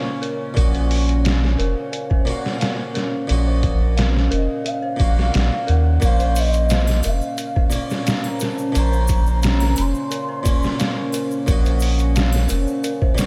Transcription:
Already playing: A#2 A#3 C#4 A#4 C5 F5
0.22 A#4, closed hi-hat
0.54 A#1 A#2 A#3 A#4, kick, closed hi-hat
0.58 F#4 D#5
0.74 C5, closed hi-hat
0.91 open hi-hat
1.09 closed hi-hat
1.24 F5, snare, closed hi-hat
1.44 snare
1.58 F1 A#4, closed hi-hat
1.92 A#4, closed hi-hat
2.10 C5, kick
2.25 A#2 A#3 F#4, closed hi-hat
2.32 F5
2.46 snare
2.60 F5, snare, closed hi-hat
2.94 A#4, snare, closed hi-hat
3.27 A#1 A#2 A#3 A#4, closed hi-hat
3.32 F#4 D#5
3.47 C5
3.63 kick, closed hi-hat
3.97 F5, snare, closed hi-hat
4.17 snare
4.31 F1 A#4 D#5, closed hi-hat
4.64 A#4 F5, closed hi-hat
4.82 C5
4.96 A#1 A#2 A#3, kick, closed hi-hat
5.01 F#4 F5
5.19 snare
5.33 A#1 F5, snare, closed hi-hat
5.67 D#2 A#4 F#5, closed hi-hat
6.00 A#1 A#2 A#3 C#4 A#4 F5, kick, closed hi-hat, shaker
6.04 C#4 C5
6.19 C5, closed hi-hat, shaker
6.36 D#5, open hi-hat, shaker
6.53 closed hi-hat, shaker
6.69 F5, snare, closed hi-hat, shaker
6.87 snare, triangle, shaker
7.03 F1 A#4, closed hi-hat, triangle, shaker
7.08 F5
7.21 shaker
7.37 A#4, closed hi-hat, shaker
7.56 C5, kick
7.70 A#2 A#3, closed hi-hat, shaker
7.75 C#4
7.90 snare, shaker
8.06 F5 A#5, snare, closed hi-hat, shaker
8.24 triangle
8.40 A#4 A5, snare, closed hi-hat, shaker
8.58 shaker
8.72 A#1 A#2 A#3 A#4, closed hi-hat, shaker
8.77 C#4 C5 A#5
8.92 C5, shaker
9.08 kick, closed hi-hat, shaker
9.27 shaker
9.43 F5, snare, closed hi-hat, shaker
9.60 snare, triangle, shaker
9.76 F1 A#4 C6, closed hi-hat, triangle, shaker
9.94 shaker
10.11 A#4, closed hi-hat, shaker
10.29 C5
10.43 A#2 A#3, kick, closed hi-hat, shaker
10.47 C#4
10.62 snare, shaker
10.79 F5, snare, closed hi-hat, shaker
11.12 A#4, closed hi-hat, triangle, shaker
11.31 shaker
11.46 A#1 A#2 A#3 A#4, kick, closed hi-hat, shaker
11.51 F#4 D#5
11.65 C5, closed hi-hat, shaker
11.80 open hi-hat, shaker
11.99 closed hi-hat, shaker
12.15 F5, snare, closed hi-hat, shaker
12.33 snare, triangle, shaker
12.49 F1 A#4, closed hi-hat, triangle, shaker
12.67 shaker
12.84 A#4, closed hi-hat, shaker
13.01 C5, kick
13.15 A#2 A#3, closed hi-hat, shaker
13.19 F#4 F5, snare

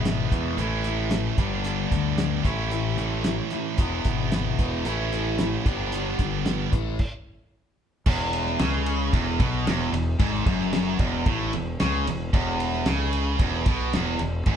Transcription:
Already playing: G#1 E3 G#3 B3 E4
0.05 E2 B2, snare, closed hi-hat
0.32 E2 B2 E3, kick, snare, closed hi-hat
0.57 A1 A2 E3 A3 C#4 E4, closed hi-hat
0.84 A2 E3 A3, closed hi-hat
1.11 A2 E3, snare, closed hi-hat
1.38 G1 G2 D3 G3 B3 D4, kick, closed hi-hat
1.64 G2 D3 G3, closed hi-hat
1.92 D2 G2 D3, kick, closed hi-hat
2.18 G2 D3, snare, closed hi-hat
2.45 A1 A2 E3 A3 C#4 E4, kick, closed hi-hat
2.71 A2 E3, closed hi-hat
2.97 A2 E3 A3, closed hi-hat
3.24 A2 E3, snare, closed hi-hat
3.50 A2 E3, closed hi-hat
3.78 E1 E2 B2 E3 G#3 B3 E4, kick, closed hi-hat
4.04 G#1 E2 B2, kick, closed hi-hat
4.32 E2 B2, snare, closed hi-hat
4.59 E1 E2 B2 E3, kick, closed hi-hat
4.85 A1 A2 E3 A3 C#4 E4, closed hi-hat
5.12 A2 E3 A3, closed hi-hat
5.38 A2 E3, snare, closed hi-hat
5.65 G1 G2 D3 G3 B3 D4, kick, closed hi-hat
5.92 G2 D3 G3, closed hi-hat
6.19 G1 G2 D3, kick, closed hi-hat
6.45 G2 D3, snare, closed hi-hat
6.71 A1 A2 E3 A3, kick, closed hi-hat
6.99 kick, crash
8.06 E1 E2, kick, crash
8.33 ride
8.46 snare
8.59 C#2 C#3, snare, ride
8.86 ride
9.13 E1 E2, kick, ride
9.39 B1 B2, kick, ride
9.66 E1 E2, snare, ride
9.92 E1 E2, ride
10.19 G#1 G#2, kick, ride
10.46 F#1 F#2, kick, ride
10.60 snare
10.73 snare, ride
10.99 E1 E2, kick, ride
11.25 A1 A2, kick, ride
11.53 E1 E2, ride
11.80 C#2 C#3, snare, ride
12.06 E1 E2, ride
12.33 E1 E2, kick, ride
12.60 ride
12.73 snare
12.86 C#2 C#3, snare, ride
13.13 ride
13.39 E1 E2, kick, ride
13.66 B1 B2, kick, ride
13.93 E1 E2, snare, ride
14.19 E1 E2, ride
14.46 G#1 G#2, kick, ride

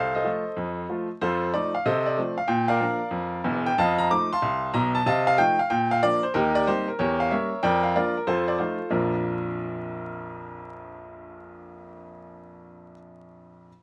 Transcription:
Already playing: C2 A4 C5 F5
0.15 A4 C5 D#5
0.24 F3 A3 F4
0.57 F2
0.89 F3 A3 F4
1.21 F2 F4 A4 C5
1.54 F3 A3 D#4 D5
1.75 F5
1.86 C3 A4 C5 D#5
2.06 D5
2.17 F3 A3 C4
2.38 F5
2.48 A#2 G5
2.68 A#4 D5 F5
2.80 F3 A#3 D4
3.11 F2
3.44 E1 E2
3.66 G5
3.78 F2 D#5 F5 A5
3.98 A#5
4.11 F3 A3 D#4 D6
4.33 F5 A5 C6
4.42 C2
4.74 B1 B2 A#5
4.95 A5
5.06 C3 D#5 F5 A5
5.27 F5
5.38 F3 A3 D#4 G5
5.59 F5
5.70 A#2 G5
5.91 F5
6.03 F3 A#3 D4 D5
6.23 C5
6.34 D#2 D#4 G4 A#4
6.55 D5
6.67 G3 A#3 C4 D#4 G4 C5
6.88 A#4
6.99 E2 G4 A#4 C#5
7.20 F5
7.31 G3 A#3 C#4 A#4 C#5 E5
7.63 F2 A#4 D5 G5
7.83 F5
7.96 F3 A#3 D4 F4 A#4 D5
8.17 A#4
8.27 F2 F4 A4 C5
8.48 D5
8.59 F3 A3 D#4 F4 A4 C5
8.90 A#1 F2 F3 A#3 D4 F4 A#4

